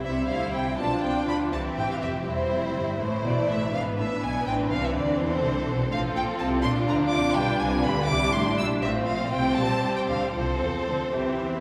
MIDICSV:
0, 0, Header, 1, 6, 480
1, 0, Start_track
1, 0, Tempo, 493421
1, 29, Time_signature, 6, 3, 24, 8
1, 3868, Tempo, 483871
1, 8188, Tempo, 498753
1, 9628, Tempo, 521739
1, 11261, End_track
2, 0, Start_track
2, 0, Title_t, "Violin section"
2, 0, Program_c, 0, 48
2, 33, Note_on_c, 0, 76, 63
2, 257, Note_off_c, 0, 76, 0
2, 276, Note_on_c, 0, 77, 62
2, 511, Note_off_c, 0, 77, 0
2, 519, Note_on_c, 0, 79, 54
2, 754, Note_off_c, 0, 79, 0
2, 760, Note_on_c, 0, 81, 59
2, 997, Note_off_c, 0, 81, 0
2, 1008, Note_on_c, 0, 79, 63
2, 1241, Note_off_c, 0, 79, 0
2, 1248, Note_on_c, 0, 83, 63
2, 1326, Note_off_c, 0, 83, 0
2, 1487, Note_on_c, 0, 81, 66
2, 1565, Note_off_c, 0, 81, 0
2, 1728, Note_on_c, 0, 79, 62
2, 1843, Note_off_c, 0, 79, 0
2, 1859, Note_on_c, 0, 77, 57
2, 1904, Note_off_c, 0, 77, 0
2, 1967, Note_on_c, 0, 76, 59
2, 2045, Note_off_c, 0, 76, 0
2, 2205, Note_on_c, 0, 72, 64
2, 2904, Note_off_c, 0, 72, 0
2, 2922, Note_on_c, 0, 72, 64
2, 3153, Note_off_c, 0, 72, 0
2, 3159, Note_on_c, 0, 74, 67
2, 3394, Note_off_c, 0, 74, 0
2, 3397, Note_on_c, 0, 76, 61
2, 3633, Note_off_c, 0, 76, 0
2, 3634, Note_on_c, 0, 77, 68
2, 3712, Note_off_c, 0, 77, 0
2, 3870, Note_on_c, 0, 76, 61
2, 4107, Note_off_c, 0, 76, 0
2, 4111, Note_on_c, 0, 80, 66
2, 4351, Note_on_c, 0, 79, 64
2, 4352, Note_off_c, 0, 80, 0
2, 4431, Note_off_c, 0, 79, 0
2, 4588, Note_on_c, 0, 77, 67
2, 4707, Note_off_c, 0, 77, 0
2, 4720, Note_on_c, 0, 76, 58
2, 4830, Note_on_c, 0, 74, 65
2, 4835, Note_off_c, 0, 76, 0
2, 5066, Note_off_c, 0, 74, 0
2, 5071, Note_on_c, 0, 72, 78
2, 5785, Note_on_c, 0, 77, 73
2, 5788, Note_off_c, 0, 72, 0
2, 5865, Note_off_c, 0, 77, 0
2, 6030, Note_on_c, 0, 79, 77
2, 6109, Note_off_c, 0, 79, 0
2, 6266, Note_on_c, 0, 81, 69
2, 6346, Note_off_c, 0, 81, 0
2, 6507, Note_on_c, 0, 84, 86
2, 6586, Note_off_c, 0, 84, 0
2, 6744, Note_on_c, 0, 82, 64
2, 6823, Note_off_c, 0, 82, 0
2, 6981, Note_on_c, 0, 86, 76
2, 7220, Note_off_c, 0, 86, 0
2, 7227, Note_on_c, 0, 79, 84
2, 7464, Note_on_c, 0, 80, 72
2, 7467, Note_off_c, 0, 79, 0
2, 7704, Note_on_c, 0, 83, 77
2, 7706, Note_off_c, 0, 80, 0
2, 7945, Note_on_c, 0, 86, 80
2, 7946, Note_off_c, 0, 83, 0
2, 8184, Note_off_c, 0, 86, 0
2, 8192, Note_on_c, 0, 84, 67
2, 8429, Note_off_c, 0, 84, 0
2, 8430, Note_on_c, 0, 88, 73
2, 8507, Note_off_c, 0, 88, 0
2, 8666, Note_on_c, 0, 76, 74
2, 8743, Note_off_c, 0, 76, 0
2, 8907, Note_on_c, 0, 77, 61
2, 9142, Note_off_c, 0, 77, 0
2, 9147, Note_on_c, 0, 79, 68
2, 9383, Note_off_c, 0, 79, 0
2, 9384, Note_on_c, 0, 81, 77
2, 9746, Note_off_c, 0, 81, 0
2, 9754, Note_on_c, 0, 79, 66
2, 9800, Note_off_c, 0, 79, 0
2, 9864, Note_on_c, 0, 77, 61
2, 10100, Note_off_c, 0, 77, 0
2, 10101, Note_on_c, 0, 72, 66
2, 11261, Note_off_c, 0, 72, 0
2, 11261, End_track
3, 0, Start_track
3, 0, Title_t, "Violin section"
3, 0, Program_c, 1, 48
3, 35, Note_on_c, 1, 64, 46
3, 40, Note_on_c, 1, 72, 50
3, 721, Note_off_c, 1, 64, 0
3, 723, Note_off_c, 1, 72, 0
3, 758, Note_on_c, 1, 65, 43
3, 762, Note_on_c, 1, 74, 43
3, 1469, Note_off_c, 1, 65, 0
3, 1486, Note_off_c, 1, 74, 0
3, 1489, Note_on_c, 1, 67, 47
3, 1489, Note_on_c, 1, 76, 47
3, 2189, Note_off_c, 1, 76, 0
3, 2202, Note_on_c, 1, 64, 49
3, 2204, Note_off_c, 1, 67, 0
3, 2204, Note_on_c, 1, 76, 46
3, 2903, Note_off_c, 1, 76, 0
3, 2911, Note_off_c, 1, 64, 0
3, 2923, Note_on_c, 1, 64, 51
3, 2924, Note_on_c, 1, 72, 51
3, 3620, Note_off_c, 1, 64, 0
3, 3634, Note_off_c, 1, 72, 0
3, 3636, Note_on_c, 1, 71, 52
3, 3637, Note_on_c, 1, 62, 51
3, 5072, Note_on_c, 1, 69, 50
3, 5073, Note_off_c, 1, 71, 0
3, 5781, Note_off_c, 1, 69, 0
3, 5791, Note_off_c, 1, 62, 0
3, 5792, Note_on_c, 1, 65, 58
3, 5793, Note_on_c, 1, 69, 59
3, 6494, Note_off_c, 1, 65, 0
3, 6497, Note_off_c, 1, 69, 0
3, 6505, Note_on_c, 1, 74, 53
3, 6506, Note_on_c, 1, 65, 59
3, 7223, Note_on_c, 1, 71, 57
3, 7226, Note_off_c, 1, 74, 0
3, 7918, Note_off_c, 1, 65, 0
3, 7932, Note_off_c, 1, 71, 0
3, 7945, Note_on_c, 1, 67, 54
3, 7949, Note_on_c, 1, 64, 54
3, 8665, Note_off_c, 1, 67, 0
3, 8667, Note_off_c, 1, 64, 0
3, 8669, Note_on_c, 1, 72, 61
3, 8670, Note_on_c, 1, 65, 55
3, 9374, Note_off_c, 1, 65, 0
3, 9390, Note_on_c, 1, 67, 51
3, 10096, Note_off_c, 1, 72, 0
3, 10106, Note_on_c, 1, 69, 51
3, 10107, Note_off_c, 1, 67, 0
3, 10107, Note_on_c, 1, 72, 50
3, 10814, Note_off_c, 1, 69, 0
3, 10815, Note_off_c, 1, 72, 0
3, 10827, Note_on_c, 1, 67, 44
3, 10830, Note_on_c, 1, 76, 43
3, 11261, Note_off_c, 1, 67, 0
3, 11261, Note_off_c, 1, 76, 0
3, 11261, End_track
4, 0, Start_track
4, 0, Title_t, "Viola section"
4, 0, Program_c, 2, 48
4, 35, Note_on_c, 2, 55, 42
4, 35, Note_on_c, 2, 64, 43
4, 720, Note_off_c, 2, 55, 0
4, 720, Note_off_c, 2, 64, 0
4, 760, Note_on_c, 2, 62, 44
4, 761, Note_on_c, 2, 53, 48
4, 1485, Note_off_c, 2, 53, 0
4, 1485, Note_off_c, 2, 62, 0
4, 1486, Note_on_c, 2, 52, 43
4, 1486, Note_on_c, 2, 60, 43
4, 2188, Note_off_c, 2, 52, 0
4, 2190, Note_off_c, 2, 60, 0
4, 2200, Note_on_c, 2, 55, 45
4, 2201, Note_on_c, 2, 60, 44
4, 2901, Note_off_c, 2, 55, 0
4, 2902, Note_off_c, 2, 60, 0
4, 2914, Note_on_c, 2, 57, 47
4, 2915, Note_on_c, 2, 52, 46
4, 3629, Note_off_c, 2, 57, 0
4, 3631, Note_on_c, 2, 59, 49
4, 4338, Note_off_c, 2, 59, 0
4, 4340, Note_off_c, 2, 52, 0
4, 4348, Note_on_c, 2, 60, 51
4, 4352, Note_on_c, 2, 52, 49
4, 5759, Note_off_c, 2, 52, 0
4, 5776, Note_off_c, 2, 60, 0
4, 5788, Note_on_c, 2, 60, 52
4, 5790, Note_on_c, 2, 53, 50
4, 6495, Note_off_c, 2, 60, 0
4, 6496, Note_off_c, 2, 53, 0
4, 6512, Note_on_c, 2, 62, 61
4, 6515, Note_on_c, 2, 53, 58
4, 7217, Note_off_c, 2, 53, 0
4, 7230, Note_on_c, 2, 55, 55
4, 7938, Note_off_c, 2, 62, 0
4, 7950, Note_on_c, 2, 62, 58
4, 8653, Note_off_c, 2, 62, 0
4, 8665, Note_on_c, 2, 60, 52
4, 8668, Note_off_c, 2, 55, 0
4, 8668, Note_on_c, 2, 57, 49
4, 9373, Note_off_c, 2, 57, 0
4, 9385, Note_on_c, 2, 55, 47
4, 10093, Note_off_c, 2, 60, 0
4, 10101, Note_on_c, 2, 53, 45
4, 10104, Note_on_c, 2, 60, 42
4, 10105, Note_off_c, 2, 55, 0
4, 10812, Note_off_c, 2, 53, 0
4, 10813, Note_off_c, 2, 60, 0
4, 10828, Note_on_c, 2, 52, 46
4, 10829, Note_on_c, 2, 60, 46
4, 11261, Note_off_c, 2, 52, 0
4, 11261, Note_off_c, 2, 60, 0
4, 11261, End_track
5, 0, Start_track
5, 0, Title_t, "Cello section"
5, 0, Program_c, 3, 48
5, 29, Note_on_c, 3, 48, 47
5, 254, Note_off_c, 3, 48, 0
5, 277, Note_on_c, 3, 50, 46
5, 512, Note_off_c, 3, 50, 0
5, 514, Note_on_c, 3, 48, 50
5, 751, Note_off_c, 3, 48, 0
5, 754, Note_on_c, 3, 47, 48
5, 832, Note_off_c, 3, 47, 0
5, 997, Note_on_c, 3, 48, 43
5, 1074, Note_off_c, 3, 48, 0
5, 1241, Note_on_c, 3, 50, 47
5, 1478, Note_off_c, 3, 50, 0
5, 1483, Note_on_c, 3, 48, 50
5, 1561, Note_off_c, 3, 48, 0
5, 1727, Note_on_c, 3, 45, 47
5, 1805, Note_off_c, 3, 45, 0
5, 1961, Note_on_c, 3, 41, 52
5, 2195, Note_off_c, 3, 41, 0
5, 2202, Note_on_c, 3, 40, 51
5, 2439, Note_off_c, 3, 40, 0
5, 2443, Note_on_c, 3, 41, 47
5, 2676, Note_on_c, 3, 43, 45
5, 2679, Note_off_c, 3, 41, 0
5, 2915, Note_on_c, 3, 45, 55
5, 2916, Note_off_c, 3, 43, 0
5, 3149, Note_off_c, 3, 45, 0
5, 3153, Note_on_c, 3, 47, 51
5, 3231, Note_off_c, 3, 47, 0
5, 3391, Note_on_c, 3, 45, 52
5, 3624, Note_on_c, 3, 44, 53
5, 3625, Note_off_c, 3, 45, 0
5, 3861, Note_off_c, 3, 44, 0
5, 3867, Note_on_c, 3, 45, 50
5, 3947, Note_off_c, 3, 45, 0
5, 4110, Note_on_c, 3, 47, 50
5, 4346, Note_off_c, 3, 47, 0
5, 4350, Note_on_c, 3, 45, 55
5, 4586, Note_off_c, 3, 45, 0
5, 4591, Note_on_c, 3, 48, 56
5, 4826, Note_off_c, 3, 48, 0
5, 4834, Note_on_c, 3, 50, 56
5, 4914, Note_off_c, 3, 50, 0
5, 5071, Note_on_c, 3, 52, 59
5, 5306, Note_off_c, 3, 52, 0
5, 5316, Note_on_c, 3, 48, 53
5, 5552, Note_off_c, 3, 48, 0
5, 5554, Note_on_c, 3, 47, 56
5, 5786, Note_off_c, 3, 47, 0
5, 5788, Note_on_c, 3, 45, 63
5, 6023, Note_off_c, 3, 45, 0
5, 6023, Note_on_c, 3, 46, 59
5, 6102, Note_off_c, 3, 46, 0
5, 6267, Note_on_c, 3, 48, 57
5, 6503, Note_off_c, 3, 48, 0
5, 6508, Note_on_c, 3, 46, 59
5, 6746, Note_on_c, 3, 50, 54
5, 6748, Note_off_c, 3, 46, 0
5, 6982, Note_off_c, 3, 50, 0
5, 6988, Note_on_c, 3, 48, 57
5, 7068, Note_off_c, 3, 48, 0
5, 7226, Note_on_c, 3, 47, 65
5, 7306, Note_off_c, 3, 47, 0
5, 7463, Note_on_c, 3, 48, 55
5, 7701, Note_off_c, 3, 48, 0
5, 7706, Note_on_c, 3, 50, 60
5, 7948, Note_off_c, 3, 50, 0
5, 7948, Note_on_c, 3, 48, 60
5, 8190, Note_off_c, 3, 48, 0
5, 8191, Note_on_c, 3, 45, 55
5, 8424, Note_off_c, 3, 45, 0
5, 8430, Note_on_c, 3, 46, 53
5, 8668, Note_off_c, 3, 46, 0
5, 8668, Note_on_c, 3, 45, 59
5, 8902, Note_off_c, 3, 45, 0
5, 8910, Note_on_c, 3, 46, 55
5, 9143, Note_off_c, 3, 46, 0
5, 9148, Note_on_c, 3, 48, 55
5, 9383, Note_off_c, 3, 48, 0
5, 9389, Note_on_c, 3, 46, 51
5, 9466, Note_off_c, 3, 46, 0
5, 9633, Note_on_c, 3, 48, 44
5, 9707, Note_off_c, 3, 48, 0
5, 9870, Note_on_c, 3, 50, 48
5, 9943, Note_off_c, 3, 50, 0
5, 10108, Note_on_c, 3, 48, 52
5, 10344, Note_off_c, 3, 48, 0
5, 10353, Note_on_c, 3, 52, 47
5, 10426, Note_off_c, 3, 52, 0
5, 10590, Note_on_c, 3, 50, 48
5, 10664, Note_off_c, 3, 50, 0
5, 10831, Note_on_c, 3, 48, 50
5, 11066, Note_off_c, 3, 48, 0
5, 11068, Note_on_c, 3, 52, 43
5, 11261, Note_off_c, 3, 52, 0
5, 11261, End_track
6, 0, Start_track
6, 0, Title_t, "Double bass section"
6, 0, Program_c, 4, 48
6, 30, Note_on_c, 4, 36, 51
6, 255, Note_off_c, 4, 36, 0
6, 274, Note_on_c, 4, 38, 45
6, 510, Note_off_c, 4, 38, 0
6, 515, Note_on_c, 4, 36, 41
6, 752, Note_off_c, 4, 36, 0
6, 758, Note_on_c, 4, 35, 45
6, 836, Note_off_c, 4, 35, 0
6, 1003, Note_on_c, 4, 36, 42
6, 1080, Note_off_c, 4, 36, 0
6, 1242, Note_on_c, 4, 38, 42
6, 1478, Note_off_c, 4, 38, 0
6, 1485, Note_on_c, 4, 36, 51
6, 1563, Note_off_c, 4, 36, 0
6, 1722, Note_on_c, 4, 33, 43
6, 1799, Note_off_c, 4, 33, 0
6, 1962, Note_on_c, 4, 29, 44
6, 2196, Note_off_c, 4, 29, 0
6, 2200, Note_on_c, 4, 28, 46
6, 2438, Note_off_c, 4, 28, 0
6, 2440, Note_on_c, 4, 29, 46
6, 2675, Note_on_c, 4, 31, 44
6, 2678, Note_off_c, 4, 29, 0
6, 2915, Note_off_c, 4, 31, 0
6, 2920, Note_on_c, 4, 33, 56
6, 3152, Note_off_c, 4, 33, 0
6, 3156, Note_on_c, 4, 35, 49
6, 3234, Note_off_c, 4, 35, 0
6, 3395, Note_on_c, 4, 33, 47
6, 3627, Note_off_c, 4, 33, 0
6, 3630, Note_on_c, 4, 32, 52
6, 3864, Note_off_c, 4, 32, 0
6, 3869, Note_on_c, 4, 33, 51
6, 3948, Note_off_c, 4, 33, 0
6, 4114, Note_on_c, 4, 35, 51
6, 4348, Note_off_c, 4, 35, 0
6, 4349, Note_on_c, 4, 33, 61
6, 4585, Note_off_c, 4, 33, 0
6, 4595, Note_on_c, 4, 36, 54
6, 4828, Note_off_c, 4, 36, 0
6, 4835, Note_on_c, 4, 38, 52
6, 4914, Note_off_c, 4, 38, 0
6, 5074, Note_on_c, 4, 40, 57
6, 5307, Note_off_c, 4, 40, 0
6, 5314, Note_on_c, 4, 36, 51
6, 5551, Note_off_c, 4, 36, 0
6, 5554, Note_on_c, 4, 35, 52
6, 5786, Note_off_c, 4, 35, 0
6, 5788, Note_on_c, 4, 33, 61
6, 6024, Note_off_c, 4, 33, 0
6, 6029, Note_on_c, 4, 34, 56
6, 6108, Note_off_c, 4, 34, 0
6, 6270, Note_on_c, 4, 36, 55
6, 6505, Note_off_c, 4, 36, 0
6, 6512, Note_on_c, 4, 34, 62
6, 6747, Note_on_c, 4, 38, 54
6, 6750, Note_off_c, 4, 34, 0
6, 6983, Note_off_c, 4, 38, 0
6, 6985, Note_on_c, 4, 36, 57
6, 7064, Note_off_c, 4, 36, 0
6, 7227, Note_on_c, 4, 35, 64
6, 7306, Note_off_c, 4, 35, 0
6, 7467, Note_on_c, 4, 36, 58
6, 7703, Note_off_c, 4, 36, 0
6, 7706, Note_on_c, 4, 38, 55
6, 7941, Note_on_c, 4, 36, 57
6, 7948, Note_off_c, 4, 38, 0
6, 8187, Note_off_c, 4, 36, 0
6, 8188, Note_on_c, 4, 33, 52
6, 8422, Note_off_c, 4, 33, 0
6, 8422, Note_on_c, 4, 34, 57
6, 8664, Note_off_c, 4, 34, 0
6, 8665, Note_on_c, 4, 33, 59
6, 8900, Note_off_c, 4, 33, 0
6, 8905, Note_on_c, 4, 34, 51
6, 9141, Note_off_c, 4, 34, 0
6, 9148, Note_on_c, 4, 36, 51
6, 9383, Note_on_c, 4, 34, 53
6, 9384, Note_off_c, 4, 36, 0
6, 9460, Note_off_c, 4, 34, 0
6, 9631, Note_on_c, 4, 36, 44
6, 9704, Note_off_c, 4, 36, 0
6, 9865, Note_on_c, 4, 38, 51
6, 9938, Note_off_c, 4, 38, 0
6, 10110, Note_on_c, 4, 36, 56
6, 10345, Note_off_c, 4, 36, 0
6, 10350, Note_on_c, 4, 40, 49
6, 10423, Note_off_c, 4, 40, 0
6, 10591, Note_on_c, 4, 38, 45
6, 10665, Note_off_c, 4, 38, 0
6, 10830, Note_on_c, 4, 36, 50
6, 11066, Note_off_c, 4, 36, 0
6, 11067, Note_on_c, 4, 40, 44
6, 11261, Note_off_c, 4, 40, 0
6, 11261, End_track
0, 0, End_of_file